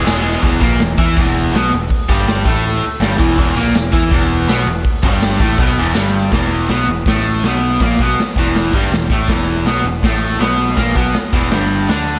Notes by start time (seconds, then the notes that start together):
0.03 E1 E2 B2 E3 G#3 B3 G#4, snare, open hi-hat, tambourine
0.40 E1 E2 E3, kick, open hi-hat
0.60 A#1 A#2 A#3, kick
0.79 E1 E2, snare, open hi-hat
0.98 E2 E3 E4, kick
1.16 E1 E2 E3, kick, open hi-hat
1.53 B1 B2 B3, snare, open hi-hat
1.73 E1 E2
1.90 kick, open hi-hat
2.08 G1 G2 G3, kick
2.27 snare, open hi-hat
2.45 A1 A2 A3, kick
2.63 open hi-hat
2.83 muted overdriven electric guitar stroke
3.00 G1 G2 G3, snare, open hi-hat
3.17 E1 E2 E3, kick
3.38 E1 E2 E3, kick, open hi-hat
3.56 A#1 A#2 A#3
3.74 E1 E2, snare, open hi-hat, tambourine
3.92 E2 E3 E4, kick
4.10 E1 E2 E3, kick, open hi-hat
4.47 B1 B2 B3, snare, open hi-hat, tambourine
4.66 E1 E2
4.85 kick, open hi-hat
5.03 G1 G2 G3, kick
5.21 snare, open hi-hat, tambourine
5.40 A1 A2 A3, kick
5.58 B1 B2 B3, kick, open hi-hat
5.78 E1 E2 E3
5.94 G1 G2 G3, snare, open hi-hat, tambourine
6.32 E1 E2 E3, kick, snare, crash
6.68 B1 B2 B3, snare, crash
6.88 E1 E2
7.06 A1 A2 A3, kick, snare, crash
7.43 B1 B2 B3, snare, crash
7.80 A#1 A#2 A#3, kick, snare, crash
7.99 B1 B2 B3, kick
8.19 muted overdriven electric guitar stroke, snare, crash
8.36 E1 E2 E3, kick
8.55 snare, crash
8.73 G1 G2 G3, kick
8.90 E1 E2, snare, crash
9.10 A1 A2 A3, kick
9.28 E1 E2 E3, kick, snare, crash
9.65 B1 B2 B3, snare, crash
9.84 E1 E2
10.03 A1 A2 A3, kick, snare, crash
10.39 B1 B2 B3, snare, crash
10.76 A#1 A#2 A#3, kick, snare, crash
10.95 B1 B2 B3, kick
11.14 muted overdriven electric guitar stroke, muted picked electric bass stroke, snare, crash
11.33 E1 E2 E3, kick
11.51 G1 G2 G3, snare, crash
11.88 D2 D3 D4, snare, crash